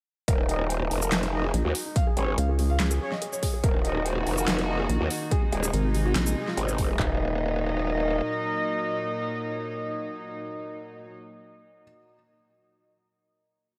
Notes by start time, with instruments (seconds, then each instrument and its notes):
0.28 wobble bass D#1, felt piano A#4, kick, closed hi-hat
0.39 felt piano D#4
0.49 felt piano D#4, brass ensemble D#4 A#4 D#5, closed hi-hat
0.60 felt piano D#4
0.70 felt piano C5, closed hi-hat
0.81 felt piano D#4
0.91 wobble bass F1, felt piano D#4, open hi-hat
1.02 felt piano A#4, shaker
1.12 wobble bass F1, felt piano D#4, snare, clap, closed hi-hat
1.23 felt piano D#4, snare, closed hi-hat
1.33 brass ensemble D#4 A#4 D#5, felt piano D#4
1.44 felt piano G#4
1.54 wobble bass A#1, felt piano D#4, closed hi-hat
1.65 wobble bass D#2, felt piano F#4
1.75 felt piano D#4, open hi-hat
1.86 felt piano D#4
1.96 felt piano F5, kick, closed hi-hat
2.07 felt piano G#4
2.17 wobble bass G#1, brass ensemble C#4 G#4 C#5, felt piano G#4, closed hi-hat
2.28 felt piano G#4
2.38 wobble bass C#2, felt piano F5, closed hi-hat
2.49 felt piano G#4
2.59 felt piano G#4, open hi-hat
2.70 felt piano F5
2.80 wobble bass C#2, felt piano G#4, snare, clap, closed hi-hat
2.91 felt piano G#4, closed hi-hat, shaker
3.01 brass ensemble C#4 G#4 C#5, felt piano G#4
3.12 felt piano D#5, snare
3.22 felt piano G#4, closed hi-hat
3.33 felt piano C#5, shaker
3.43 felt piano G#4, kick, open hi-hat
3.54 felt piano G#4
3.63 wobble bass D#1, string section D#3 A#3 F#4, felt piano A#4, kick, closed hi-hat
3.74 felt piano D#4
3.84 felt piano D#4, brass ensemble D#4 A#4 D#5, closed hi-hat
3.96 felt piano D#4
4.06 felt piano C5, closed hi-hat
4.16 felt piano D#4
4.26 wobble bass F1, felt piano D#4, open hi-hat
4.38 felt piano A#4, shaker
4.48 wobble bass F1, felt piano D#4, snare, clap, closed hi-hat
4.59 felt piano D#4, snare, closed hi-hat
4.69 felt piano D#4, brass ensemble D#4 A#4 D#5
4.80 felt piano G#4
4.89 wobble bass A#1, felt piano D#4, closed hi-hat
5.01 wobble bass D#2, felt piano F#4
5.10 felt piano D#4, open hi-hat
5.22 felt piano D#4
5.31 string section C3 G#3 D#4, felt piano G#4, kick, closed hi-hat
5.43 felt piano G#3
5.52 wobble bass D#1, brass ensemble G#3 D#4 G#4, felt piano G#3, closed hi-hat
5.63 felt piano G#3, shaker
5.73 wobble bass G#1, felt piano A#4, closed hi-hat
5.84 felt piano G#3
5.95 felt piano G#3, open hi-hat
6.06 felt piano F#4
6.15 wobble bass A#1, felt piano G#3, snare, clap, closed hi-hat
6.27 felt piano G#3, closed hi-hat, shaker
6.36 brass ensemble G#3 D#4 G#4, felt piano G#3
6.47 felt piano F4, snare
6.57 wobble bass G#1, felt piano G#3, closed hi-hat
6.68 felt piano D#4, shaker
6.78 felt piano G#3, kick, open hi-hat
6.90 felt piano G#3
6.99 wobble bass D#1, string section A#2 F#3 D#4, brass ensemble D#4 A#4 D#5, felt piano D#4, kick, clap, floor tom